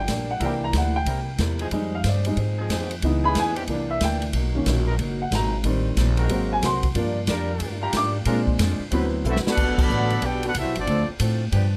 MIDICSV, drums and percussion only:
0, 0, Header, 1, 2, 480
1, 0, Start_track
1, 0, Tempo, 327154
1, 603, Time_signature, 4, 2, 24, 8
1, 17266, End_track
2, 0, Start_track
2, 0, Title_t, "Drums"
2, 115, Note_on_c, 9, 44, 59
2, 115, Note_on_c, 9, 51, 75
2, 119, Note_on_c, 9, 36, 20
2, 122, Note_on_c, 9, 38, 73
2, 262, Note_off_c, 9, 44, 0
2, 262, Note_off_c, 9, 51, 0
2, 265, Note_off_c, 9, 36, 0
2, 269, Note_off_c, 9, 38, 0
2, 595, Note_on_c, 9, 51, 69
2, 597, Note_on_c, 9, 36, 23
2, 741, Note_off_c, 9, 51, 0
2, 744, Note_off_c, 9, 36, 0
2, 1074, Note_on_c, 9, 44, 56
2, 1074, Note_on_c, 9, 51, 76
2, 1077, Note_on_c, 9, 36, 27
2, 1081, Note_on_c, 9, 38, 77
2, 1221, Note_off_c, 9, 44, 0
2, 1221, Note_off_c, 9, 51, 0
2, 1224, Note_off_c, 9, 36, 0
2, 1228, Note_off_c, 9, 38, 0
2, 1560, Note_on_c, 9, 36, 25
2, 1560, Note_on_c, 9, 51, 70
2, 1706, Note_off_c, 9, 51, 0
2, 1707, Note_off_c, 9, 36, 0
2, 2031, Note_on_c, 9, 44, 64
2, 2031, Note_on_c, 9, 51, 73
2, 2037, Note_on_c, 9, 36, 29
2, 2038, Note_on_c, 9, 38, 76
2, 2177, Note_off_c, 9, 44, 0
2, 2177, Note_off_c, 9, 51, 0
2, 2184, Note_off_c, 9, 36, 0
2, 2185, Note_off_c, 9, 38, 0
2, 2335, Note_on_c, 9, 51, 53
2, 2482, Note_off_c, 9, 51, 0
2, 2511, Note_on_c, 9, 51, 67
2, 2518, Note_on_c, 9, 36, 26
2, 2658, Note_off_c, 9, 51, 0
2, 2665, Note_off_c, 9, 36, 0
2, 2991, Note_on_c, 9, 44, 57
2, 2991, Note_on_c, 9, 51, 77
2, 2997, Note_on_c, 9, 36, 27
2, 2999, Note_on_c, 9, 38, 74
2, 3138, Note_off_c, 9, 44, 0
2, 3138, Note_off_c, 9, 51, 0
2, 3144, Note_off_c, 9, 36, 0
2, 3145, Note_off_c, 9, 38, 0
2, 3297, Note_on_c, 9, 51, 58
2, 3443, Note_off_c, 9, 51, 0
2, 3475, Note_on_c, 9, 51, 59
2, 3478, Note_on_c, 9, 36, 30
2, 3622, Note_off_c, 9, 51, 0
2, 3625, Note_off_c, 9, 36, 0
2, 3961, Note_on_c, 9, 44, 59
2, 3961, Note_on_c, 9, 51, 78
2, 3963, Note_on_c, 9, 36, 22
2, 3969, Note_on_c, 9, 38, 76
2, 4108, Note_off_c, 9, 44, 0
2, 4108, Note_off_c, 9, 51, 0
2, 4109, Note_off_c, 9, 36, 0
2, 4115, Note_off_c, 9, 38, 0
2, 4266, Note_on_c, 9, 51, 55
2, 4412, Note_off_c, 9, 51, 0
2, 4435, Note_on_c, 9, 51, 69
2, 4443, Note_on_c, 9, 36, 28
2, 4582, Note_off_c, 9, 51, 0
2, 4589, Note_off_c, 9, 36, 0
2, 4916, Note_on_c, 9, 44, 63
2, 4916, Note_on_c, 9, 51, 80
2, 4923, Note_on_c, 9, 36, 26
2, 4924, Note_on_c, 9, 38, 73
2, 5063, Note_off_c, 9, 44, 0
2, 5063, Note_off_c, 9, 51, 0
2, 5070, Note_off_c, 9, 36, 0
2, 5070, Note_off_c, 9, 38, 0
2, 5227, Note_on_c, 9, 51, 53
2, 5374, Note_off_c, 9, 51, 0
2, 5392, Note_on_c, 9, 51, 63
2, 5402, Note_on_c, 9, 36, 27
2, 5539, Note_off_c, 9, 51, 0
2, 5549, Note_off_c, 9, 36, 0
2, 5878, Note_on_c, 9, 44, 61
2, 5878, Note_on_c, 9, 51, 82
2, 5883, Note_on_c, 9, 36, 20
2, 5885, Note_on_c, 9, 38, 76
2, 6025, Note_off_c, 9, 44, 0
2, 6025, Note_off_c, 9, 51, 0
2, 6030, Note_off_c, 9, 36, 0
2, 6032, Note_off_c, 9, 38, 0
2, 6188, Note_on_c, 9, 51, 55
2, 6335, Note_off_c, 9, 51, 0
2, 6355, Note_on_c, 9, 51, 74
2, 6361, Note_on_c, 9, 36, 21
2, 6502, Note_off_c, 9, 51, 0
2, 6508, Note_off_c, 9, 36, 0
2, 6837, Note_on_c, 9, 44, 55
2, 6837, Note_on_c, 9, 51, 85
2, 6841, Note_on_c, 9, 36, 28
2, 6844, Note_on_c, 9, 38, 76
2, 6984, Note_off_c, 9, 44, 0
2, 6984, Note_off_c, 9, 51, 0
2, 6987, Note_off_c, 9, 36, 0
2, 6991, Note_off_c, 9, 38, 0
2, 7318, Note_on_c, 9, 36, 22
2, 7318, Note_on_c, 9, 51, 67
2, 7464, Note_off_c, 9, 51, 0
2, 7465, Note_off_c, 9, 36, 0
2, 7800, Note_on_c, 9, 36, 28
2, 7803, Note_on_c, 9, 44, 55
2, 7803, Note_on_c, 9, 51, 79
2, 7810, Note_on_c, 9, 38, 82
2, 7947, Note_off_c, 9, 36, 0
2, 7950, Note_off_c, 9, 44, 0
2, 7950, Note_off_c, 9, 51, 0
2, 7957, Note_off_c, 9, 38, 0
2, 8271, Note_on_c, 9, 51, 75
2, 8277, Note_on_c, 9, 36, 26
2, 8418, Note_off_c, 9, 51, 0
2, 8424, Note_off_c, 9, 36, 0
2, 8757, Note_on_c, 9, 44, 71
2, 8757, Note_on_c, 9, 51, 79
2, 8759, Note_on_c, 9, 36, 30
2, 8765, Note_on_c, 9, 38, 75
2, 8904, Note_off_c, 9, 44, 0
2, 8904, Note_off_c, 9, 51, 0
2, 8906, Note_off_c, 9, 36, 0
2, 8911, Note_off_c, 9, 38, 0
2, 9055, Note_on_c, 9, 51, 53
2, 9202, Note_off_c, 9, 51, 0
2, 9234, Note_on_c, 9, 51, 72
2, 9241, Note_on_c, 9, 36, 20
2, 9381, Note_off_c, 9, 51, 0
2, 9387, Note_off_c, 9, 36, 0
2, 9721, Note_on_c, 9, 44, 71
2, 9721, Note_on_c, 9, 51, 80
2, 9722, Note_on_c, 9, 36, 23
2, 9728, Note_on_c, 9, 38, 77
2, 9868, Note_off_c, 9, 44, 0
2, 9868, Note_off_c, 9, 51, 0
2, 9869, Note_off_c, 9, 36, 0
2, 9875, Note_off_c, 9, 38, 0
2, 10021, Note_on_c, 9, 51, 58
2, 10026, Note_on_c, 9, 36, 78
2, 10168, Note_off_c, 9, 51, 0
2, 10173, Note_off_c, 9, 36, 0
2, 10196, Note_on_c, 9, 51, 73
2, 10201, Note_on_c, 9, 36, 30
2, 10343, Note_off_c, 9, 51, 0
2, 10348, Note_off_c, 9, 36, 0
2, 10668, Note_on_c, 9, 44, 60
2, 10668, Note_on_c, 9, 51, 85
2, 10675, Note_on_c, 9, 38, 84
2, 10678, Note_on_c, 9, 36, 28
2, 10815, Note_off_c, 9, 44, 0
2, 10815, Note_off_c, 9, 51, 0
2, 10822, Note_off_c, 9, 38, 0
2, 10825, Note_off_c, 9, 36, 0
2, 11149, Note_on_c, 9, 51, 71
2, 11158, Note_on_c, 9, 36, 28
2, 11296, Note_off_c, 9, 51, 0
2, 11305, Note_off_c, 9, 36, 0
2, 11631, Note_on_c, 9, 44, 59
2, 11631, Note_on_c, 9, 51, 84
2, 11638, Note_on_c, 9, 38, 85
2, 11640, Note_on_c, 9, 36, 23
2, 11777, Note_off_c, 9, 44, 0
2, 11777, Note_off_c, 9, 51, 0
2, 11785, Note_off_c, 9, 38, 0
2, 11786, Note_off_c, 9, 36, 0
2, 12109, Note_on_c, 9, 51, 77
2, 12121, Note_on_c, 9, 36, 21
2, 12256, Note_off_c, 9, 51, 0
2, 12268, Note_off_c, 9, 36, 0
2, 12429, Note_on_c, 9, 36, 76
2, 12576, Note_off_c, 9, 36, 0
2, 12605, Note_on_c, 9, 44, 55
2, 12605, Note_on_c, 9, 51, 86
2, 12612, Note_on_c, 9, 38, 84
2, 12752, Note_off_c, 9, 44, 0
2, 12752, Note_off_c, 9, 51, 0
2, 12759, Note_off_c, 9, 38, 0
2, 13081, Note_on_c, 9, 51, 72
2, 13086, Note_on_c, 9, 36, 22
2, 13227, Note_off_c, 9, 51, 0
2, 13233, Note_off_c, 9, 36, 0
2, 13566, Note_on_c, 9, 44, 71
2, 13713, Note_off_c, 9, 44, 0
2, 13738, Note_on_c, 9, 38, 83
2, 13884, Note_off_c, 9, 38, 0
2, 13893, Note_on_c, 9, 38, 102
2, 14039, Note_off_c, 9, 38, 0
2, 14046, Note_on_c, 9, 49, 92
2, 14047, Note_on_c, 9, 36, 86
2, 14193, Note_off_c, 9, 49, 0
2, 14194, Note_off_c, 9, 36, 0
2, 14353, Note_on_c, 9, 36, 108
2, 14357, Note_on_c, 9, 49, 84
2, 14500, Note_off_c, 9, 36, 0
2, 14504, Note_off_c, 9, 49, 0
2, 14517, Note_on_c, 9, 44, 65
2, 14664, Note_off_c, 9, 44, 0
2, 14823, Note_on_c, 9, 51, 53
2, 14970, Note_off_c, 9, 51, 0
2, 14993, Note_on_c, 9, 51, 68
2, 15000, Note_on_c, 9, 36, 22
2, 15140, Note_off_c, 9, 51, 0
2, 15147, Note_off_c, 9, 36, 0
2, 15302, Note_on_c, 9, 51, 57
2, 15448, Note_off_c, 9, 51, 0
2, 15473, Note_on_c, 9, 44, 54
2, 15473, Note_on_c, 9, 51, 91
2, 15478, Note_on_c, 9, 36, 27
2, 15620, Note_off_c, 9, 44, 0
2, 15620, Note_off_c, 9, 51, 0
2, 15625, Note_off_c, 9, 36, 0
2, 15780, Note_on_c, 9, 51, 59
2, 15926, Note_off_c, 9, 51, 0
2, 15953, Note_on_c, 9, 51, 66
2, 15955, Note_on_c, 9, 36, 27
2, 16100, Note_off_c, 9, 51, 0
2, 16102, Note_off_c, 9, 36, 0
2, 16427, Note_on_c, 9, 44, 58
2, 16427, Note_on_c, 9, 51, 87
2, 16436, Note_on_c, 9, 36, 21
2, 16573, Note_off_c, 9, 44, 0
2, 16573, Note_off_c, 9, 51, 0
2, 16583, Note_off_c, 9, 36, 0
2, 16907, Note_on_c, 9, 51, 73
2, 16914, Note_on_c, 9, 36, 21
2, 17054, Note_off_c, 9, 51, 0
2, 17061, Note_off_c, 9, 36, 0
2, 17266, End_track
0, 0, End_of_file